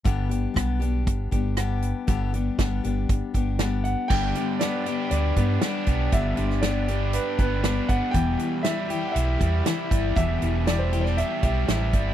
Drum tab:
CC |----------------|----------------|x---------------|----------------|
HH |x-x-x-x-x-x-x-x-|x-x-x-x-x-x-x-x-|--x-x-x-x-x-x-x-|x-x-x-x-x-x-x-x-|
SD |----r-------r---|----o-------o---|----o-------o---|---oo-------o---|
BD |o---o---o-o-----|o---o---o-o-----|o---------o---o-|o---------o---o-|

CC |----------------|----------------|
HH |x-x-x-x-x-x-x-x-|x-x-x-x-x-x-x-x-|
SD |----o-------o---|----o--o----o---|
BD |o---------o---o-|o---------o---o-|